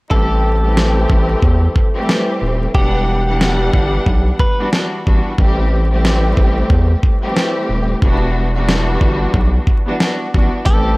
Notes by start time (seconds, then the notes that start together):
0.11 A1 E3 G3 A3 C4 G4 A4, kick
0.63 E3 G3 A3 C4 G4
0.77 snare
1.10 A1, kick
1.43 E2, kick
1.76 kick
1.95 E3 G3 A3 C4 G4
2.09 snare
2.42 D#1
2.75 E1 E3 G3 B3 D4 G4 F#5, kick
3.27 E3 G3 B3 D4 F#5
3.41 snare
3.73 G1, kick
4.06 B1, kick
4.39 B4, kick
4.59 E3 G3 B3 D4 F#4
4.71 E3 G3 B3 D4 F#4, snare
5.05 A1 E3 G3 B3 D4 F#4, kick
5.38 A1 E3 G3 A3 C4 G4, kick
5.91 E3 G3 A3 C4 G4
6.05 snare
6.37 A1, kick
6.70 E2, kick
7.03 kick
7.22 E3 G3 A3 C4 G4
7.36 snare
7.69 D#1
8.02 E1 E3 G3 B3 D4 F#4, kick
8.55 E3 G3 B3 D4 F#4
8.69 snare
9.01 G1, kick
9.34 B1, kick
9.67 kick
9.87 E3 G3 B3 D4 F#4
9.99 E3 G3 B3 D4 F#4, snare
10.33 A1 E3 G3 B3 D4 F#4, kick
10.66 A1 E3 G3 A3 C4 G4 A4, kick, closed hi-hat